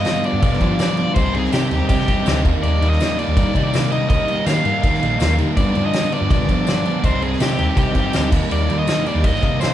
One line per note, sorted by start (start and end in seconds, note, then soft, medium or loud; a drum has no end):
0.00 1.15 B3 medium
0.00 1.15 G4 medium
0.00 0.25 D#5 medium
0.00 1.15 F5 medium
0.05 0.24 G2 medium
0.05 0.24 D3 medium
0.05 0.24 F3 medium
0.05 0.24 G3 medium
0.05 0.25 B3 medium
0.05 0.24 D4 medium
0.05 0.25 F4 medium
0.05 snare loud
0.05 tambourine medium
0.05 crash medium
0.24 0.41 G2 medium
0.24 0.42 D3 medium
0.24 0.42 F3 medium
0.24 0.43 G3 medium
0.24 0.42 B3 medium
0.24 0.42 D4 medium
0.24 0.42 F4 medium
0.24 0.42 D5 medium
0.24 crash medium
0.33 0.41 G2 medium
0.42 0.60 G2 medium
0.42 0.61 B2 loud
0.42 0.60 D3 loud
0.42 0.61 F3 loud
0.42 0.61 G3 loud
0.42 0.61 B3 loud
0.42 0.62 D4 loud
0.42 0.62 F4 loud
0.42 0.79 D5 medium
0.42 kick loud
0.42 crash medium
0.53 snare soft
0.61 0.78 G2 medium
0.61 0.79 D3 medium
0.61 1.06 F3 medium
0.61 0.79 F3 medium
0.61 0.81 G3 medium
0.61 0.80 B3 medium
0.61 0.81 D4 loud
0.61 0.80 F4 medium
0.61 kick medium
0.61 crash medium
0.79 0.98 G2 medium
0.79 0.98 D3 medium
0.79 0.99 F3 medium
0.79 0.97 G3 medium
0.79 0.99 B3 medium
0.79 0.98 D4 medium
0.79 0.99 F4 medium
0.79 1.14 D5 loud
0.79 snare loud
0.79 tambourine loud
0.79 crash medium
0.97 1.16 G2 medium
0.97 1.16 D3 medium
0.97 1.16 F3 medium
0.97 1.17 G3 medium
0.97 1.17 B3 medium
0.97 1.16 D4 medium
0.97 1.17 F4 medium
0.97 crash medium
1.15 1.46 C2 loud
1.15 1.35 C3 medium
1.15 1.36 G3 medium
1.15 1.35 C4 loud
1.15 2.45 C4 medium
1.15 1.37 D#4 loud
1.15 2.44 A#4 medium
1.15 1.35 C5 medium
1.15 2.44 D#5 medium
1.15 kick loud
1.15 crash medium
1.34 1.52 C3 medium
1.34 1.53 G3 medium
1.34 1.53 C4 medium
1.34 1.54 D#4 loud
1.34 1.52 G#4 medium
1.34 crash medium
1.45 snare soft
1.52 1.70 C3 medium
1.52 1.68 C3 loud
1.52 1.72 G3 medium
1.52 1.71 C4 medium
1.52 1.72 D#4 medium
1.52 1.87 G4 medium
1.52 snare loud
1.52 tambourine medium
1.52 crash medium
1.71 1.79 D#2 medium
1.71 1.88 C3 medium
1.71 1.90 G3 medium
1.71 1.89 C4 medium
1.71 1.90 D#4 medium
1.71 crash medium
1.89 2.05 C3 loud
1.89 2.07 C3 medium
1.89 2.08 G3 loud
1.89 2.07 C4 medium
1.89 2.09 D#4 medium
1.89 2.41 G4 medium
1.89 kick loud
1.89 crash medium
2.00 snare soft
2.08 2.23 G2 medium
2.08 2.25 C3 medium
2.08 2.26 G3 medium
2.08 2.26 C4 loud
2.08 2.27 D#4 loud
2.08 kick medium
2.08 crash medium
2.26 2.45 D2 loud
2.26 2.44 C3 medium
2.26 2.44 G3 medium
2.26 2.44 C4 medium
2.26 2.46 D#4 loud
2.26 snare loud
2.26 tambourine medium
2.26 crash medium
2.44 2.53 D#2 medium
2.44 2.62 D#3 loud
2.44 2.63 G3 medium
2.44 2.63 A#3 loud
2.44 5.54 D#4 medium
2.44 2.64 D#4 loud
2.44 7.00 G4 medium
2.44 7.00 F5 medium
2.44 kick loud
2.44 crash medium
2.63 2.78 D#2 medium
2.63 2.80 D#3 medium
2.63 2.81 G3 medium
2.63 2.81 A#3 medium
2.63 2.82 D#4 loud
2.63 2.89 D5 medium
2.63 crash medium
2.81 2.96 D#2 loud
2.81 3.00 D#3 medium
2.81 3.01 G3 medium
2.81 3.01 A#3 loud
2.81 3.01 D#4 loud
2.81 crash medium
2.90 3.19 D#5 loud
2.90 snare soft
3.00 3.17 D#3 medium
3.00 3.18 G3 medium
3.00 3.19 A#3 medium
3.00 3.19 D#4 medium
3.00 snare loud
3.00 tambourine medium
3.00 crash medium
3.18 3.36 D#3 medium
3.18 3.36 G3 medium
3.18 3.37 A#3 medium
3.18 3.36 D#4 medium
3.18 3.63 D5 loud
3.18 crash medium
3.28 3.35 D#2 medium
3.37 3.55 G2 loud
3.37 3.53 D#3 loud
3.37 3.55 G3 loud
3.37 3.54 A#3 loud
3.37 3.55 D#4 loud
3.37 kick loud
3.37 crash medium
3.54 4.15 C3 medium
3.54 3.72 D#3 medium
3.54 3.73 G3 medium
3.54 3.73 A#3 medium
3.54 3.74 D#4 loud
3.54 kick medium
3.54 crash medium
3.64 3.91 D5 loud
3.73 3.91 D#3 medium
3.73 3.91 G3 loud
3.73 3.92 A#3 loud
3.73 3.92 D#4 medium
3.73 snare loud
3.73 tambourine loud
3.73 crash medium
3.92 4.09 D#3 medium
3.92 4.10 G3 medium
3.92 4.09 A#3 medium
3.92 4.10 D#4 medium
3.92 4.08 D#5 loud
3.92 crash medium
4.09 4.26 D#3 medium
4.09 4.28 G3 medium
4.09 4.28 A#3 loud
4.09 4.28 D#4 medium
4.09 4.44 D#5 loud
4.09 kick loud
4.09 crash medium
4.28 4.44 D#3 medium
4.28 4.46 G3 loud
4.28 4.45 A#3 medium
4.28 4.46 D#4 loud
4.28 crash medium
4.45 4.64 D#3 medium
4.45 4.62 D#3 medium
4.45 4.65 G3 medium
4.45 4.65 A#3 medium
4.45 4.65 D#4 medium
4.45 5.35 F5 loud
4.45 snare loud
4.45 tambourine loud
4.45 crash medium
4.65 4.73 G2 loud
4.65 4.81 D#3 medium
4.65 4.82 G3 medium
4.65 4.82 A#3 medium
4.65 4.83 D#4 medium
4.65 crash medium
4.82 5.00 D#3 medium
4.82 4.99 D#3 medium
4.82 5.02 G3 loud
4.82 5.01 A#3 medium
4.82 5.02 D#4 loud
4.82 kick loud
4.82 crash medium
4.94 snare soft
5.01 5.17 A#1 medium
5.01 5.19 D#3 medium
5.01 5.20 G3 medium
5.01 5.20 A#3 medium
5.01 5.20 D#4 medium
5.01 crash medium
5.20 5.40 D#2 loud
5.20 5.37 D#3 medium
5.20 5.38 G3 medium
5.20 5.38 A#3 loud
5.20 5.38 D#4 loud
5.20 snare loud
5.20 tambourine loud
5.20 crash medium
5.38 5.56 D#3 medium
5.38 5.46 D#3 medium
5.38 5.58 G3 medium
5.38 5.56 A#3 medium
5.38 5.56 D#4 medium
5.38 crash medium
5.56 5.74 G2 medium
5.56 5.72 G2 loud
5.56 5.75 D3 medium
5.56 5.75 F3 loud
5.56 5.76 G3 medium
5.56 5.76 B3 medium
5.56 7.03 B3 medium
5.56 5.76 D4 medium
5.56 5.85 D5 medium
5.56 kick loud
5.56 crash medium
5.75 5.93 G2 medium
5.75 5.91 G2 loud
5.75 5.94 D3 medium
5.75 5.94 F3 medium
5.75 5.93 G3 medium
5.75 5.94 B3 loud
5.75 5.95 D4 medium
5.75 crash medium
5.85 6.11 D#5 loud
5.93 6.10 G2 medium
5.93 6.10 D3 medium
5.93 6.11 F3 medium
5.93 6.12 G3 medium
5.93 6.11 B3 medium
5.93 6.12 D4 medium
5.93 snare loud
5.93 tambourine medium
5.93 crash medium
6.11 6.28 G2 medium
6.11 6.29 D3 medium
6.11 6.30 F3 medium
6.11 6.32 G3 medium
6.11 6.30 B3 medium
6.11 6.30 D4 medium
6.11 6.30 D5 medium
6.11 crash medium
6.21 6.29 G2 medium
6.29 6.47 G2 loud
6.29 6.49 B2 loud
6.29 6.47 D3 loud
6.29 6.48 F3 medium
6.29 6.50 G3 loud
6.29 6.48 B3 loud
6.29 6.49 D4 loud
6.29 6.68 D5 medium
6.29 kick loud
6.29 crash medium
6.48 6.65 G2 medium
6.48 6.65 D3 medium
6.48 6.94 F3 medium
6.48 6.66 F3 medium
6.48 6.68 G3 medium
6.48 6.66 B3 medium
6.48 6.67 D4 medium
6.48 kick medium
6.48 crash medium
6.66 6.83 G2 loud
6.66 6.84 D3 medium
6.66 6.84 F3 medium
6.66 6.87 G3 medium
6.66 6.84 B3 medium
6.66 6.85 D4 medium
6.66 7.05 D5 medium
6.66 snare loud
6.66 tambourine medium
6.66 crash medium
6.84 7.02 G2 medium
6.84 7.02 D3 medium
6.84 7.03 F3 medium
6.84 7.04 G3 medium
6.84 7.03 B3 medium
6.84 7.03 D4 medium
6.84 crash medium
7.02 7.34 C2 loud
7.02 7.20 C3 medium
7.02 7.21 G3 medium
7.02 7.21 C4 medium
7.02 8.31 C4 medium
7.02 7.22 D#4 medium
7.02 8.31 A#4 medium
7.02 7.22 C5 loud
7.02 8.31 D#5 medium
7.02 kick loud
7.02 crash medium
7.21 7.38 C3 medium
7.21 7.39 G3 loud
7.21 7.39 C4 loud
7.21 7.40 D#4 medium
7.21 7.41 G#4 loud
7.21 crash medium
7.33 snare soft
7.39 7.57 C3 medium
7.39 7.55 C3 medium
7.39 7.58 G3 medium
7.39 7.58 C4 medium
7.39 7.59 D#4 medium
7.39 7.77 G4 medium
7.39 snare loud
7.39 tambourine medium
7.39 crash medium
7.58 7.66 D#2 loud
7.58 7.76 C3 medium
7.58 7.76 G3 medium
7.58 7.76 C4 medium
7.58 7.77 D#4 medium
7.58 crash medium
7.77 7.93 C3 loud
7.77 7.92 C3 loud
7.77 7.94 G3 loud
7.77 7.94 C4 loud
7.77 7.95 D#4 loud
7.77 8.29 G4 medium
7.77 kick loud
7.77 crash medium
7.94 8.10 G2 medium
7.94 8.11 C3 medium
7.94 8.11 G3 medium
7.94 8.12 C4 medium
7.94 8.13 D#4 medium
7.94 kick medium
7.94 crash medium
8.12 8.32 D2 loud
8.12 8.30 C3 medium
8.12 8.30 G3 medium
8.12 8.31 C4 medium
8.12 8.30 D#4 medium
8.12 snare loud
8.12 tambourine medium
8.12 crash medium
8.30 8.40 D#2 medium
8.30 8.48 D#3 loud
8.30 8.48 G3 medium
8.30 8.50 A#3 loud
8.30 9.74 D#4 medium
8.30 8.49 D#4 loud
8.30 9.74 G4 medium
8.30 9.74 F5 loud
8.30 kick loud
8.30 crash loud
8.49 8.66 D#2 loud
8.49 8.66 D#3 medium
8.49 8.67 G3 medium
8.49 8.69 A#3 loud
8.49 8.68 D#4 loud
8.49 8.78 D5 loud
8.49 crash medium
8.68 8.84 D#2 loud
8.68 8.85 D#3 medium
8.68 8.86 G3 medium
8.68 8.87 A#3 loud
8.68 8.87 D#4 medium
8.68 crash medium
8.79 9.04 D#5 loud
8.86 9.04 D#3 medium
8.86 9.05 G3 medium
8.86 9.06 A#3 medium
8.86 9.05 D#4 medium
8.86 snare loud
8.86 tambourine medium
8.86 crash loud
9.05 9.23 D#3 medium
9.05 9.23 G3 medium
9.05 9.24 A#3 medium
9.05 9.24 D#4 medium
9.05 9.24 D5 medium
9.05 crash medium
9.15 9.22 D#2 medium
9.24 9.43 G2 loud
9.24 9.40 D#3 medium
9.24 9.41 G3 medium
9.24 9.43 A#3 loud
9.24 9.42 D#4 loud
9.24 9.42 D#5 loud
9.24 kick loud
9.24 crash medium
9.35 snare soft
9.41 9.74 C3 medium
9.41 9.58 D#3 medium
9.41 9.59 G3 medium
9.41 9.61 A#3 medium
9.41 9.60 D#4 loud
9.41 9.60 D#5 medium
9.41 kick medium
9.41 crash medium
9.60 9.74 D#3 medium
9.60 9.74 G3 loud
9.60 9.74 A#3 loud
9.60 9.74 D#4 loud
9.60 9.74 C5 medium
9.60 snare loud
9.60 tambourine loud
9.60 crash medium